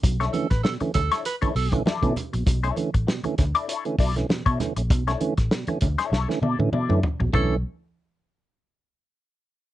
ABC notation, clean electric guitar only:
X:1
M:4/4
L:1/16
Q:"Swing 16ths" 1/4=99
K:Bm
V:1 name="Clean electric guitar"
z [DEAc] z4 z [DEAc] z [DEAc] z2 [DEAd]2 z2 | z [DEAc] z4 z [DEAd] [DEAc] z [DEAd] z2 [DEAc] z2 | z [DEAc] z4 z [DEAc] [DEAc] z [DEAd] z [DEAd]2 z2 | [DEAc] z12 z3 |]